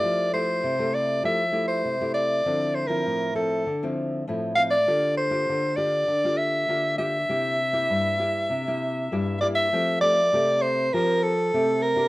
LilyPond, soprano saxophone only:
\new Staff \with { instrumentName = "Soprano saxophone" } { \time 4/4 \key f \major \tempo 4 = 99 d''8 c''4 d''8 e''8. c''8. d''8~ | d''8 c''16 bes'8. a'4 r4 f''16 d''16~ | d''8 c''4 d''4 e''4 e''8~ | e''2.~ e''8 d''16 e''16~ |
e''8 d''4 c''8 bes'8 a'4 bes'8 | }